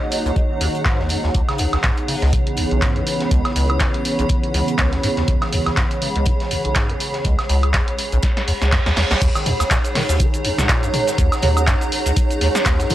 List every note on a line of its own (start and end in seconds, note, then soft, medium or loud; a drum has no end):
0.00 1.31 D#3 medium
0.00 1.31 A#3 medium
0.00 2.73 D#4 medium
0.00 1.31 F#4 medium
0.00 1.34 G#4 medium
0.00 1.35 C#5 medium
0.00 1.31 D#5 medium
0.00 9.22 F#5 medium
0.00 1.35 A#5 medium
0.12 closed hi-hat medium
0.12 open hi-hat medium
0.26 0.32 C#2 loud
0.26 closed hi-hat soft
0.36 kick loud
0.36 closed hi-hat medium
0.61 0.69 D#2 loud
0.61 closed hi-hat medium
0.61 open hi-hat loud
0.75 closed hi-hat soft
0.85 1.01 G#2 medium
0.85 kick loud
0.85 snare loud
0.85 clap loud
0.85 closed hi-hat medium
0.99 1.12 D#2 medium
0.99 snare soft
1.09 1.18 F#2 loud
1.09 closed hi-hat medium
1.09 open hi-hat medium
1.23 1.30 D#2 medium
1.23 snare soft
1.34 1.42 C#2 medium
1.34 9.17 C#3 medium
1.34 9.18 E3 medium
1.34 9.17 B3 medium
1.34 12.95 G#4 medium
1.34 9.17 C#5 medium
1.34 kick loud
1.34 closed hi-hat medium
1.49 1.61 C#3 medium
1.49 snare soft
1.49 closed hi-hat soft
1.49 high woodblock medium
1.58 1.67 C#2 loud
1.58 closed hi-hat medium
1.58 open hi-hat loud
1.71 1.77 C#2 medium
1.71 12.95 C#5 medium
1.71 9.22 B5 medium
1.71 snare soft
1.71 closed hi-hat soft
1.71 high woodblock medium
1.83 1.92 G#2 medium
1.83 kick loud
1.83 snare loud
1.83 clap loud
1.83 closed hi-hat medium
1.97 closed hi-hat soft
2.08 2.16 C#3 medium
2.08 open hi-hat medium
2.22 2.35 C#2 loud
2.22 snare soft
2.22 closed hi-hat soft
2.33 2.59 C#3 medium
2.33 kick loud
2.33 closed hi-hat medium
2.47 closed hi-hat soft
2.57 2.65 C#2 loud
2.57 closed hi-hat medium
2.57 open hi-hat medium
2.71 2.80 B1 medium
2.71 closed hi-hat soft
2.82 2.98 G#2 medium
2.82 kick loud
2.82 snare loud
2.82 clap loud
2.82 closed hi-hat medium
2.96 3.02 E2 medium
2.96 closed hi-hat soft
3.07 closed hi-hat medium
3.07 open hi-hat medium
3.21 snare soft
3.21 closed hi-hat soft
3.31 3.43 C#2 loud
3.31 kick loud
3.31 closed hi-hat medium
3.45 snare soft
3.45 closed hi-hat soft
3.45 high woodblock medium
3.56 3.82 C#2 loud
3.56 closed hi-hat medium
3.56 open hi-hat loud
3.70 closed hi-hat soft
3.70 high woodblock medium
3.80 3.88 F#2 medium
3.80 kick loud
3.80 snare loud
3.80 clap loud
3.80 closed hi-hat medium
3.94 closed hi-hat soft
4.05 closed hi-hat medium
4.05 open hi-hat medium
4.19 4.25 B1 loud
4.19 closed hi-hat soft
4.29 kick loud
4.29 closed hi-hat medium
4.44 closed hi-hat soft
4.54 4.62 C#2 loud
4.54 closed hi-hat medium
4.54 open hi-hat medium
4.68 closed hi-hat soft
4.78 4.94 C#2 loud
4.78 kick loud
4.78 snare loud
4.78 clap loud
4.78 closed hi-hat medium
4.92 4.99 E2 medium
4.92 snare soft
4.92 closed hi-hat soft
5.03 5.08 G#2 loud
5.03 closed hi-hat medium
5.03 open hi-hat medium
5.17 5.23 D#2 medium
5.17 snare soft
5.17 closed hi-hat soft
5.28 5.36 C#2 medium
5.28 kick loud
5.28 closed hi-hat medium
5.41 5.54 C#3 medium
5.41 snare soft
5.41 closed hi-hat soft
5.41 high woodblock medium
5.53 5.60 C#2 loud
5.53 closed hi-hat medium
5.53 open hi-hat medium
5.66 5.70 C#2 medium
5.66 snare soft
5.66 closed hi-hat soft
5.66 high woodblock medium
5.77 5.85 G#2 medium
5.77 kick loud
5.77 snare loud
5.77 clap loud
5.77 closed hi-hat medium
5.91 closed hi-hat soft
6.02 6.10 C#3 medium
6.02 open hi-hat medium
6.16 6.28 C#2 loud
6.16 closed hi-hat soft
6.26 6.53 C#3 medium
6.26 kick loud
6.26 closed hi-hat medium
6.40 snare soft
6.40 closed hi-hat soft
6.51 6.59 C#2 loud
6.51 closed hi-hat medium
6.51 open hi-hat medium
6.65 6.74 B1 medium
6.65 closed hi-hat soft
6.75 6.91 G#2 medium
6.75 kick loud
6.75 snare loud
6.75 clap loud
6.75 closed hi-hat medium
6.90 6.96 E2 medium
6.90 closed hi-hat soft
7.00 closed hi-hat medium
7.00 open hi-hat medium
7.14 snare soft
7.14 closed hi-hat soft
7.25 7.36 C#2 loud
7.25 kick loud
7.25 closed hi-hat medium
7.39 snare soft
7.39 closed hi-hat soft
7.39 high woodblock medium
7.49 7.76 C#2 loud
7.49 closed hi-hat medium
7.49 open hi-hat loud
7.63 closed hi-hat soft
7.63 high woodblock medium
7.74 7.82 F#2 medium
7.74 kick loud
7.74 snare loud
7.74 clap loud
7.74 closed hi-hat medium
7.88 closed hi-hat soft
7.99 closed hi-hat medium
7.99 open hi-hat medium
8.12 8.19 B1 loud
8.12 closed hi-hat soft
8.23 kick loud
8.23 snare medium
8.23 closed hi-hat medium
8.23 reverse cymbal medium
8.37 snare medium
8.37 closed hi-hat soft
8.48 8.52 E2 medium
8.48 closed hi-hat medium
8.48 open hi-hat loud
8.62 8.74 C#2 medium
8.62 snare medium
8.62 closed hi-hat soft
8.72 8.80 F#2 medium
8.72 kick loud
8.72 snare medium
8.72 snare loud
8.72 clap loud
8.72 closed hi-hat loud
8.72 closed hi-hat medium
8.86 8.92 D#2 loud
8.86 snare medium
8.86 snare loud
8.86 closed hi-hat soft
8.86 closed hi-hat medium
8.96 9.05 E2 medium
8.96 snare loud
8.96 snare medium
8.96 closed hi-hat medium
8.96 open hi-hat medium
9.11 9.14 C#2 medium
9.11 snare medium
9.11 snare loud
9.11 closed hi-hat soft
9.11 closed hi-hat medium
9.22 9.29 D#2 medium
9.22 12.95 D#4 medium
9.22 kick loud
9.22 closed hi-hat medium
9.22 crash loud
9.22 shaker medium
9.35 9.48 D#3 medium
9.35 snare soft
9.35 closed hi-hat soft
9.35 high woodblock medium
9.35 shaker soft
9.46 9.54 D#2 loud
9.46 closed hi-hat medium
9.46 open hi-hat loud
9.46 mid tom medium
9.60 9.64 D#2 medium
9.60 snare soft
9.60 closed hi-hat soft
9.60 high woodblock medium
9.60 shaker medium
9.70 9.79 A#2 medium
9.70 12.95 A#5 medium
9.70 kick loud
9.70 snare loud
9.70 clap loud
9.70 closed hi-hat medium
9.70 shaker medium
9.84 12.95 F#5 medium
9.84 closed hi-hat soft
9.84 shaker soft
9.95 10.03 D#3 medium
9.95 snare medium
9.95 open hi-hat medium
9.95 mid tom medium
10.09 10.21 D#2 loud
10.09 snare soft
10.09 closed hi-hat soft
10.09 shaker medium
10.20 10.46 D#3 medium
10.20 kick loud
10.20 closed hi-hat medium
10.20 shaker medium
10.34 closed hi-hat soft
10.34 shaker soft
10.45 10.52 D#2 loud
10.45 closed hi-hat medium
10.45 open hi-hat loud
10.58 10.67 C#2 medium
10.58 snare medium
10.58 closed hi-hat soft
10.58 mid tom medium
10.58 shaker medium
10.69 10.84 A#2 medium
10.69 kick loud
10.69 snare loud
10.69 clap loud
10.69 closed hi-hat loud
10.69 closed hi-hat medium
10.69 shaker medium
10.83 10.89 F#2 medium
10.83 closed hi-hat soft
10.83 shaker soft
10.94 closed hi-hat medium
10.94 open hi-hat medium
10.94 mid tom medium
11.08 snare soft
11.08 closed hi-hat soft
11.08 shaker medium
11.18 11.30 D#2 loud
11.18 kick loud
11.18 closed hi-hat medium
11.18 shaker medium
11.32 snare soft
11.32 closed hi-hat soft
11.32 high woodblock medium
11.32 shaker soft
11.42 11.69 D#2 loud
11.42 closed hi-hat medium
11.42 open hi-hat loud
11.42 mid tom medium
11.57 closed hi-hat soft
11.57 high woodblock medium
11.57 shaker medium
11.67 11.75 G#2 medium
11.67 kick loud
11.67 snare loud
11.67 clap loud
11.67 closed hi-hat loud
11.67 closed hi-hat medium
11.67 shaker medium
11.81 closed hi-hat soft
11.81 shaker soft
11.92 closed hi-hat medium
11.92 open hi-hat loud
12.06 12.12 C#2 loud
12.06 closed hi-hat soft
12.06 shaker medium
12.16 kick loud
12.16 closed hi-hat medium
12.16 shaker medium
12.31 closed hi-hat soft
12.31 shaker soft
12.41 12.49 D#2 loud
12.41 closed hi-hat medium
12.41 open hi-hat loud
12.55 snare medium
12.55 closed hi-hat soft
12.55 shaker medium
12.65 12.81 D#2 loud
12.65 kick loud
12.65 snare loud
12.65 clap loud
12.65 closed hi-hat medium
12.65 closed hi-hat loud
12.65 shaker medium
12.79 12.86 F#2 medium
12.79 snare soft
12.79 closed hi-hat soft
12.79 shaker soft
12.90 12.95 A#2 loud
12.90 closed hi-hat medium
12.90 open hi-hat medium
12.90 mid tom loud